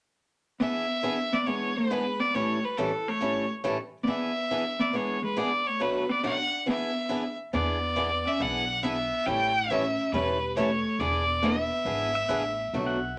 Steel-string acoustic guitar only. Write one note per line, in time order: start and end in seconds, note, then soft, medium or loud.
0.61 0.84 E3 soft
0.61 0.84 B3 medium
0.61 0.84 D4 soft
0.61 0.85 G#4 medium
1.03 1.16 E3 medium
1.03 1.16 B3 medium
1.03 1.16 D4 medium
1.03 1.16 G#4 medium
1.46 1.70 E3 soft
1.46 1.70 B3 soft
1.46 1.71 D4 medium
1.46 1.71 G#4 medium
1.91 2.03 E3 medium
1.91 2.03 B3 medium
1.91 2.03 D4 medium
1.91 2.04 G#4 medium
2.35 2.58 A2 soft
2.35 2.58 E3 soft
2.35 2.58 G3 soft
2.35 2.58 C#4 soft
2.35 2.58 E4 medium
2.35 2.58 A4 soft
2.78 2.90 A2 medium
2.78 2.90 E3 medium
2.78 2.90 G3 medium
2.78 2.90 C#4 medium
2.78 2.90 E4 medium
2.78 2.91 A4 medium
3.20 3.44 A2 medium
3.20 3.44 E3 soft
3.20 3.44 G3 medium
3.20 3.44 C#4 medium
3.20 3.44 E4 medium
3.20 3.44 A4 medium
3.64 3.76 A2 medium
3.64 3.76 E3 medium
3.64 3.77 G3 medium
3.64 3.77 C#4 medium
3.64 3.77 E4 medium
3.64 3.77 A4 medium
4.07 4.31 E3 medium
4.07 4.30 B3 soft
4.07 4.31 D4 soft
4.07 4.31 G#4 medium
4.51 4.63 E3 medium
4.51 4.63 B3 medium
4.51 4.63 D4 medium
4.51 4.64 G#4 medium
4.93 5.17 E3 soft
4.93 5.17 B3 soft
4.93 5.17 D4 medium
4.93 5.17 G#4 medium
5.36 5.49 E3 medium
5.36 5.49 B3 medium
5.36 5.50 D4 medium
5.36 5.50 G#4 medium
5.80 6.03 B2 soft
5.80 6.03 F#3 medium
5.80 6.04 A3 soft
5.80 6.04 D4 soft
5.80 6.04 F#4 medium
6.23 6.36 B2 medium
6.23 6.36 F#3 medium
6.23 6.36 A3 medium
6.23 6.36 D4 medium
6.23 6.36 F#4 medium
6.66 6.90 E3 soft
6.66 6.90 B3 soft
6.66 6.90 D4 medium
6.66 6.90 G#4 medium
7.09 7.22 E3 medium
7.09 7.22 B3 medium
7.09 7.22 D4 medium
7.09 7.23 G#4 medium
7.53 7.76 E3 soft
7.53 7.77 B3 medium
7.53 7.77 D4 medium
7.53 7.77 G#4 medium
7.96 8.09 E3 medium
7.96 8.09 B3 medium
7.96 8.09 D4 medium
7.96 8.09 G#4 medium
8.40 8.63 E3 soft
8.40 8.63 B3 medium
8.40 8.63 D4 medium
8.40 8.64 G#4 medium
8.83 8.95 E3 medium
8.83 8.96 B3 medium
8.83 8.96 D4 medium
8.83 8.96 G#4 medium
9.27 9.50 E3 soft
9.27 9.50 G3 medium
9.27 9.50 C#4 medium
9.27 9.50 E4 medium
9.27 9.51 A4 medium
9.71 9.82 E3 medium
9.71 9.83 G3 medium
9.71 9.83 C#4 medium
9.71 9.83 E4 medium
9.71 9.83 A4 medium
10.13 10.36 E3 medium
10.13 10.37 G3 soft
10.13 10.37 C#4 medium
10.13 10.37 E4 medium
10.13 10.37 A4 medium
10.57 10.69 E3 medium
10.57 10.69 G3 medium
10.57 10.69 C#4 medium
10.57 10.69 E4 medium
10.57 10.69 A4 medium
11.00 11.23 E3 medium
11.00 11.23 B3 medium
11.00 11.23 D4 medium
11.00 11.23 G#4 medium
11.43 11.55 E3 medium
11.43 11.55 B3 medium
11.43 11.55 D4 medium
11.43 11.56 G#4 medium
11.85 12.09 E3 soft
11.85 12.09 B3 medium
11.85 12.09 D4 medium
11.85 12.09 G#4 medium
12.29 12.42 E3 medium
12.29 12.42 B3 medium
12.29 12.42 D4 medium
12.29 12.42 G#4 medium
12.74 12.97 B2 medium
12.74 12.97 F#3 soft
12.74 12.97 A3 medium
12.74 12.97 D4 medium
12.74 12.97 F#4 medium